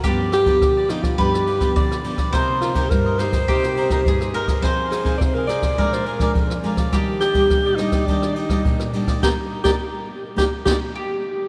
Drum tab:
RD |x-xxx-xxx-xxx-xx|x-xxx-xxx-xxx-xx|x-xxx-xxx-xxx-xx|x-xxx-xxx-xxx-xx|
SD |r-r-r-rr-r-r-r-r|r-r-r-rr-r-r-r-r|r-r-r-rr-r-r-r-r|r-r-r-rr-r-r-r-r|
BD |o--oo--oo--oo--o|o--oo--oo--oo--o|o--oo--oo--oo--o|o--oo--oo--oo--o|

RD |----------------|
SD |o--o----o-o-----|
BD |o--o----o-o-----|